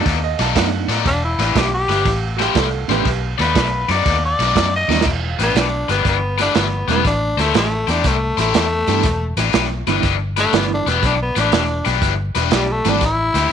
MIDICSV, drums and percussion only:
0, 0, Header, 1, 2, 480
1, 0, Start_track
1, 0, Key_signature, 1, "minor"
1, 0, Tempo, 498339
1, 1025, Time_signature, 4, 2, 24, 8
1, 13024, End_track
2, 0, Start_track
2, 0, Title_t, "Drums"
2, 54, Note_on_c, 9, 51, 80
2, 56, Note_on_c, 9, 36, 76
2, 64, Note_on_c, 9, 38, 31
2, 151, Note_off_c, 9, 51, 0
2, 152, Note_off_c, 9, 36, 0
2, 160, Note_off_c, 9, 38, 0
2, 374, Note_on_c, 9, 51, 58
2, 383, Note_on_c, 9, 38, 33
2, 470, Note_off_c, 9, 51, 0
2, 480, Note_off_c, 9, 38, 0
2, 536, Note_on_c, 9, 36, 80
2, 536, Note_on_c, 9, 51, 80
2, 546, Note_on_c, 9, 38, 103
2, 632, Note_off_c, 9, 36, 0
2, 633, Note_off_c, 9, 51, 0
2, 642, Note_off_c, 9, 38, 0
2, 860, Note_on_c, 9, 51, 62
2, 869, Note_on_c, 9, 38, 31
2, 956, Note_off_c, 9, 51, 0
2, 966, Note_off_c, 9, 38, 0
2, 1017, Note_on_c, 9, 36, 83
2, 1019, Note_on_c, 9, 51, 78
2, 1028, Note_on_c, 9, 38, 31
2, 1113, Note_off_c, 9, 36, 0
2, 1115, Note_off_c, 9, 51, 0
2, 1125, Note_off_c, 9, 38, 0
2, 1342, Note_on_c, 9, 51, 60
2, 1352, Note_on_c, 9, 38, 30
2, 1438, Note_off_c, 9, 51, 0
2, 1448, Note_off_c, 9, 38, 0
2, 1497, Note_on_c, 9, 36, 81
2, 1498, Note_on_c, 9, 51, 83
2, 1507, Note_on_c, 9, 38, 102
2, 1594, Note_off_c, 9, 36, 0
2, 1594, Note_off_c, 9, 51, 0
2, 1604, Note_off_c, 9, 38, 0
2, 1820, Note_on_c, 9, 51, 52
2, 1829, Note_on_c, 9, 38, 31
2, 1916, Note_off_c, 9, 51, 0
2, 1926, Note_off_c, 9, 38, 0
2, 1978, Note_on_c, 9, 36, 86
2, 1978, Note_on_c, 9, 51, 80
2, 1988, Note_on_c, 9, 38, 30
2, 2074, Note_off_c, 9, 51, 0
2, 2075, Note_off_c, 9, 36, 0
2, 2084, Note_off_c, 9, 38, 0
2, 2301, Note_on_c, 9, 51, 51
2, 2311, Note_on_c, 9, 38, 32
2, 2398, Note_off_c, 9, 51, 0
2, 2407, Note_off_c, 9, 38, 0
2, 2457, Note_on_c, 9, 51, 77
2, 2460, Note_on_c, 9, 36, 82
2, 2467, Note_on_c, 9, 38, 98
2, 2553, Note_off_c, 9, 51, 0
2, 2556, Note_off_c, 9, 36, 0
2, 2563, Note_off_c, 9, 38, 0
2, 2780, Note_on_c, 9, 51, 55
2, 2790, Note_on_c, 9, 38, 30
2, 2877, Note_off_c, 9, 51, 0
2, 2886, Note_off_c, 9, 38, 0
2, 2940, Note_on_c, 9, 51, 72
2, 2941, Note_on_c, 9, 36, 70
2, 2949, Note_on_c, 9, 38, 30
2, 3036, Note_off_c, 9, 51, 0
2, 3037, Note_off_c, 9, 36, 0
2, 3046, Note_off_c, 9, 38, 0
2, 3266, Note_on_c, 9, 51, 54
2, 3276, Note_on_c, 9, 38, 33
2, 3363, Note_off_c, 9, 51, 0
2, 3372, Note_off_c, 9, 38, 0
2, 3422, Note_on_c, 9, 51, 77
2, 3424, Note_on_c, 9, 36, 87
2, 3432, Note_on_c, 9, 38, 97
2, 3519, Note_off_c, 9, 51, 0
2, 3521, Note_off_c, 9, 36, 0
2, 3528, Note_off_c, 9, 38, 0
2, 3745, Note_on_c, 9, 51, 54
2, 3755, Note_on_c, 9, 38, 30
2, 3841, Note_off_c, 9, 51, 0
2, 3851, Note_off_c, 9, 38, 0
2, 3908, Note_on_c, 9, 36, 83
2, 3908, Note_on_c, 9, 51, 82
2, 3918, Note_on_c, 9, 38, 32
2, 4004, Note_off_c, 9, 36, 0
2, 4004, Note_off_c, 9, 51, 0
2, 4014, Note_off_c, 9, 38, 0
2, 4238, Note_on_c, 9, 51, 60
2, 4247, Note_on_c, 9, 38, 30
2, 4334, Note_off_c, 9, 51, 0
2, 4344, Note_off_c, 9, 38, 0
2, 4389, Note_on_c, 9, 36, 79
2, 4390, Note_on_c, 9, 51, 81
2, 4399, Note_on_c, 9, 38, 103
2, 4485, Note_off_c, 9, 36, 0
2, 4486, Note_off_c, 9, 51, 0
2, 4496, Note_off_c, 9, 38, 0
2, 4723, Note_on_c, 9, 38, 48
2, 4820, Note_off_c, 9, 38, 0
2, 4828, Note_on_c, 9, 38, 79
2, 4868, Note_on_c, 9, 49, 84
2, 4869, Note_on_c, 9, 36, 104
2, 4878, Note_off_c, 9, 38, 0
2, 4878, Note_on_c, 9, 38, 29
2, 4965, Note_off_c, 9, 49, 0
2, 4966, Note_off_c, 9, 36, 0
2, 4974, Note_off_c, 9, 38, 0
2, 5197, Note_on_c, 9, 42, 56
2, 5207, Note_on_c, 9, 38, 33
2, 5293, Note_off_c, 9, 42, 0
2, 5303, Note_off_c, 9, 38, 0
2, 5352, Note_on_c, 9, 42, 82
2, 5361, Note_on_c, 9, 38, 97
2, 5448, Note_off_c, 9, 42, 0
2, 5458, Note_off_c, 9, 38, 0
2, 5674, Note_on_c, 9, 42, 51
2, 5683, Note_on_c, 9, 38, 29
2, 5770, Note_off_c, 9, 42, 0
2, 5780, Note_off_c, 9, 38, 0
2, 5826, Note_on_c, 9, 42, 70
2, 5828, Note_on_c, 9, 36, 100
2, 5836, Note_on_c, 9, 38, 33
2, 5923, Note_off_c, 9, 42, 0
2, 5925, Note_off_c, 9, 36, 0
2, 5932, Note_off_c, 9, 38, 0
2, 6150, Note_on_c, 9, 42, 52
2, 6159, Note_on_c, 9, 38, 31
2, 6246, Note_off_c, 9, 42, 0
2, 6256, Note_off_c, 9, 38, 0
2, 6305, Note_on_c, 9, 42, 77
2, 6314, Note_on_c, 9, 38, 94
2, 6401, Note_off_c, 9, 42, 0
2, 6410, Note_off_c, 9, 38, 0
2, 6629, Note_on_c, 9, 42, 49
2, 6639, Note_on_c, 9, 38, 31
2, 6726, Note_off_c, 9, 42, 0
2, 6735, Note_off_c, 9, 38, 0
2, 6788, Note_on_c, 9, 42, 67
2, 6789, Note_on_c, 9, 36, 93
2, 6797, Note_on_c, 9, 38, 31
2, 6884, Note_off_c, 9, 42, 0
2, 6885, Note_off_c, 9, 36, 0
2, 6894, Note_off_c, 9, 38, 0
2, 7116, Note_on_c, 9, 42, 58
2, 7126, Note_on_c, 9, 38, 33
2, 7213, Note_off_c, 9, 42, 0
2, 7222, Note_off_c, 9, 38, 0
2, 7265, Note_on_c, 9, 42, 83
2, 7275, Note_on_c, 9, 38, 101
2, 7362, Note_off_c, 9, 42, 0
2, 7371, Note_off_c, 9, 38, 0
2, 7594, Note_on_c, 9, 42, 60
2, 7603, Note_on_c, 9, 38, 30
2, 7690, Note_off_c, 9, 42, 0
2, 7700, Note_off_c, 9, 38, 0
2, 7745, Note_on_c, 9, 42, 84
2, 7748, Note_on_c, 9, 36, 97
2, 7755, Note_on_c, 9, 38, 31
2, 7842, Note_off_c, 9, 42, 0
2, 7844, Note_off_c, 9, 36, 0
2, 7851, Note_off_c, 9, 38, 0
2, 8073, Note_on_c, 9, 42, 58
2, 8082, Note_on_c, 9, 38, 31
2, 8169, Note_off_c, 9, 42, 0
2, 8179, Note_off_c, 9, 38, 0
2, 8226, Note_on_c, 9, 42, 83
2, 8236, Note_on_c, 9, 38, 109
2, 8322, Note_off_c, 9, 42, 0
2, 8332, Note_off_c, 9, 38, 0
2, 8546, Note_on_c, 9, 42, 59
2, 8556, Note_on_c, 9, 38, 30
2, 8643, Note_off_c, 9, 42, 0
2, 8652, Note_off_c, 9, 38, 0
2, 8700, Note_on_c, 9, 42, 80
2, 8706, Note_on_c, 9, 36, 100
2, 8710, Note_on_c, 9, 38, 32
2, 8797, Note_off_c, 9, 42, 0
2, 8802, Note_off_c, 9, 36, 0
2, 8806, Note_off_c, 9, 38, 0
2, 9024, Note_on_c, 9, 42, 61
2, 9033, Note_on_c, 9, 38, 35
2, 9120, Note_off_c, 9, 42, 0
2, 9130, Note_off_c, 9, 38, 0
2, 9179, Note_on_c, 9, 42, 83
2, 9189, Note_on_c, 9, 38, 103
2, 9275, Note_off_c, 9, 42, 0
2, 9285, Note_off_c, 9, 38, 0
2, 9505, Note_on_c, 9, 42, 53
2, 9515, Note_on_c, 9, 38, 31
2, 9601, Note_off_c, 9, 42, 0
2, 9611, Note_off_c, 9, 38, 0
2, 9660, Note_on_c, 9, 42, 74
2, 9665, Note_on_c, 9, 36, 105
2, 9669, Note_on_c, 9, 38, 31
2, 9756, Note_off_c, 9, 42, 0
2, 9761, Note_off_c, 9, 36, 0
2, 9765, Note_off_c, 9, 38, 0
2, 9984, Note_on_c, 9, 42, 59
2, 9994, Note_on_c, 9, 38, 32
2, 10080, Note_off_c, 9, 42, 0
2, 10090, Note_off_c, 9, 38, 0
2, 10142, Note_on_c, 9, 42, 74
2, 10151, Note_on_c, 9, 38, 105
2, 10238, Note_off_c, 9, 42, 0
2, 10247, Note_off_c, 9, 38, 0
2, 10471, Note_on_c, 9, 42, 51
2, 10480, Note_on_c, 9, 38, 30
2, 10567, Note_off_c, 9, 42, 0
2, 10577, Note_off_c, 9, 38, 0
2, 10622, Note_on_c, 9, 36, 93
2, 10623, Note_on_c, 9, 42, 75
2, 10633, Note_on_c, 9, 38, 31
2, 10718, Note_off_c, 9, 36, 0
2, 10719, Note_off_c, 9, 42, 0
2, 10729, Note_off_c, 9, 38, 0
2, 10944, Note_on_c, 9, 42, 57
2, 10953, Note_on_c, 9, 38, 33
2, 11040, Note_off_c, 9, 42, 0
2, 11050, Note_off_c, 9, 38, 0
2, 11096, Note_on_c, 9, 42, 80
2, 11106, Note_on_c, 9, 38, 110
2, 11193, Note_off_c, 9, 42, 0
2, 11202, Note_off_c, 9, 38, 0
2, 11417, Note_on_c, 9, 42, 53
2, 11426, Note_on_c, 9, 38, 30
2, 11513, Note_off_c, 9, 42, 0
2, 11522, Note_off_c, 9, 38, 0
2, 11576, Note_on_c, 9, 36, 102
2, 11576, Note_on_c, 9, 42, 83
2, 11585, Note_on_c, 9, 38, 33
2, 11672, Note_off_c, 9, 42, 0
2, 11673, Note_off_c, 9, 36, 0
2, 11682, Note_off_c, 9, 38, 0
2, 11896, Note_on_c, 9, 42, 59
2, 11905, Note_on_c, 9, 38, 32
2, 11992, Note_off_c, 9, 42, 0
2, 12002, Note_off_c, 9, 38, 0
2, 12048, Note_on_c, 9, 42, 84
2, 12058, Note_on_c, 9, 38, 100
2, 12144, Note_off_c, 9, 42, 0
2, 12154, Note_off_c, 9, 38, 0
2, 12375, Note_on_c, 9, 42, 64
2, 12384, Note_on_c, 9, 38, 34
2, 12471, Note_off_c, 9, 42, 0
2, 12480, Note_off_c, 9, 38, 0
2, 12529, Note_on_c, 9, 42, 80
2, 12533, Note_on_c, 9, 36, 105
2, 12538, Note_on_c, 9, 38, 32
2, 12625, Note_off_c, 9, 42, 0
2, 12630, Note_off_c, 9, 36, 0
2, 12635, Note_off_c, 9, 38, 0
2, 12858, Note_on_c, 9, 42, 59
2, 12867, Note_on_c, 9, 38, 31
2, 12954, Note_off_c, 9, 42, 0
2, 12964, Note_off_c, 9, 38, 0
2, 13024, End_track
0, 0, End_of_file